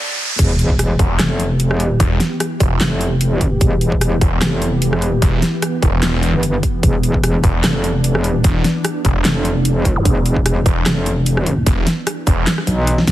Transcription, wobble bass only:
0, 0, Header, 1, 2, 480
1, 0, Start_track
1, 0, Tempo, 402685
1, 464, Time_signature, 4, 2, 24, 8
1, 15633, End_track
2, 0, Start_track
2, 0, Title_t, "Wobble bass"
2, 0, Program_c, 0, 39
2, 463, Note_on_c, 0, 28, 100
2, 1166, Note_off_c, 0, 28, 0
2, 1423, Note_on_c, 0, 29, 96
2, 2091, Note_off_c, 0, 29, 0
2, 2091, Note_on_c, 0, 28, 96
2, 2366, Note_off_c, 0, 28, 0
2, 3344, Note_on_c, 0, 29, 102
2, 4286, Note_off_c, 0, 29, 0
2, 4303, Note_on_c, 0, 28, 98
2, 5006, Note_off_c, 0, 28, 0
2, 5263, Note_on_c, 0, 29, 97
2, 5931, Note_off_c, 0, 29, 0
2, 5931, Note_on_c, 0, 28, 97
2, 6206, Note_off_c, 0, 28, 0
2, 7554, Note_on_c, 0, 31, 94
2, 7886, Note_off_c, 0, 31, 0
2, 8143, Note_on_c, 0, 28, 98
2, 8846, Note_off_c, 0, 28, 0
2, 9104, Note_on_c, 0, 29, 97
2, 9771, Note_off_c, 0, 29, 0
2, 9771, Note_on_c, 0, 28, 97
2, 10046, Note_off_c, 0, 28, 0
2, 11024, Note_on_c, 0, 29, 99
2, 11966, Note_off_c, 0, 29, 0
2, 11984, Note_on_c, 0, 28, 102
2, 12686, Note_off_c, 0, 28, 0
2, 12944, Note_on_c, 0, 29, 103
2, 13886, Note_off_c, 0, 29, 0
2, 15104, Note_on_c, 0, 35, 103
2, 15567, Note_off_c, 0, 35, 0
2, 15585, Note_on_c, 0, 40, 95
2, 15633, Note_off_c, 0, 40, 0
2, 15633, End_track
0, 0, End_of_file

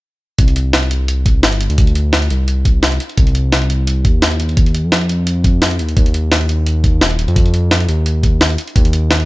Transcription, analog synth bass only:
0, 0, Header, 1, 2, 480
1, 0, Start_track
1, 0, Key_signature, -3, "minor"
1, 0, Tempo, 348837
1, 531, Time_signature, 4, 2, 24, 8
1, 12732, End_track
2, 0, Start_track
2, 0, Title_t, "Analog synth bass"
2, 0, Program_c, 0, 38
2, 530, Note_on_c, 0, 36, 98
2, 1968, Note_on_c, 0, 31, 99
2, 1989, Note_off_c, 0, 36, 0
2, 2317, Note_off_c, 0, 31, 0
2, 2336, Note_on_c, 0, 38, 92
2, 3152, Note_off_c, 0, 38, 0
2, 3171, Note_on_c, 0, 36, 79
2, 4113, Note_off_c, 0, 36, 0
2, 4370, Note_on_c, 0, 36, 103
2, 5569, Note_on_c, 0, 39, 95
2, 5590, Note_off_c, 0, 36, 0
2, 6658, Note_on_c, 0, 41, 103
2, 6679, Note_off_c, 0, 39, 0
2, 7970, Note_on_c, 0, 39, 93
2, 7990, Note_off_c, 0, 41, 0
2, 8188, Note_off_c, 0, 39, 0
2, 8210, Note_on_c, 0, 39, 99
2, 9648, Note_on_c, 0, 27, 97
2, 9668, Note_off_c, 0, 39, 0
2, 9997, Note_off_c, 0, 27, 0
2, 10016, Note_on_c, 0, 41, 97
2, 10832, Note_off_c, 0, 41, 0
2, 10848, Note_on_c, 0, 39, 82
2, 11792, Note_off_c, 0, 39, 0
2, 12050, Note_on_c, 0, 39, 94
2, 12732, Note_off_c, 0, 39, 0
2, 12732, End_track
0, 0, End_of_file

